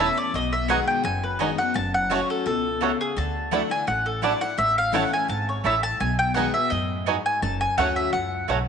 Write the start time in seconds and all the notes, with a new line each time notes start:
Already playing: E2
0.00 E3 A3 C#4 E4 E5
0.17 D5
0.34 B1 B2 D#5
0.53 E5
0.68 D#3 G#3 B3 D#4 F#4 D#5 F#5 G#5
0.88 G5
1.04 F#1 F#2 G#5
1.23 B4
1.39 D#3 G#3 B3 D#4 F#4 D#5 G#5
1.58 B3 F#4 F#5
1.74 F#1 F#2 A5
1.94 F#5
2.10 F#3 A3 C#4 F#4 C#5 F#5
2.30 A4
2.46 C#2 B2 A4
2.81 C#3 A3 C#4 F#4 C#5 F#5
3.01 G#4
3.16 D2 D3 A5
3.51 F#3 A3 D4 E4 D5 F#5
3.70 D4 E4 G#5
3.87 A1 A2 F#5
4.06 A4
4.22 F#3 A3 D4 E4 D5 F#5
4.41 D4 E4 F#5
4.58 A1 A2 E5
4.78 F5
4.92 E3 A3 C#4 E4 C#5 F#5 A5
5.11 C#4 E4 G#5
5.28 G#1 G#2 A5
5.49 C#5
5.64 A1 A2 A3 C#4 E4 C#5 E5 A5
5.83 A5
6.00 B1 B2 G#5
6.19 G5
6.34 D#3 G#3 B3 D#4 F#4 D#5 F#5 G#5
6.54 B3 F#4 E5
6.70 F#2 A2 D#5
7.06 G#2 B3 D#4 F#4 D#5 G#5
7.26 G#5
7.42 F#1 F#2 A5
7.61 G#5
7.78 D2 F#3 A3 C#4 F#4 C#5 F#5
7.96 E5
8.12 C#2 F#2 F#5
8.48 B1 G#2 A3 C#4 F#4 C#5 F#5